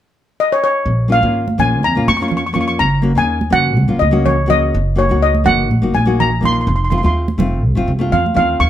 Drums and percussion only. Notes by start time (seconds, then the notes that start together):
1.48 high conga
1.59 low conga
1.83 high conga
2.08 high conga
2.31 low conga
2.56 low conga
3.41 high conga
3.53 low conga
3.77 high conga
4.02 high conga
4.26 low conga
4.51 low conga
5.35 high conga
5.47 low conga
5.71 high conga
5.95 high conga
6.20 low conga
6.44 low conga
6.92 high conga, low conga
7.28 high conga
7.40 low conga
8.13 low conga
8.26 high conga
8.37 low conga